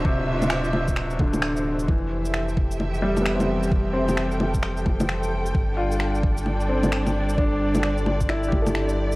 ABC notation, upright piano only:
X:1
M:4/4
L:1/16
Q:"Swing 16ths" 1/4=131
K:Flyd
V:1 name="Upright piano"
C,4- C, z4 z D,4- D, z | E,4- E, z4 z G, B, C4- | C z C4- C z8 z | z2 F4- F z3 C4- C z |
D4- D z3 E G A4- A z |]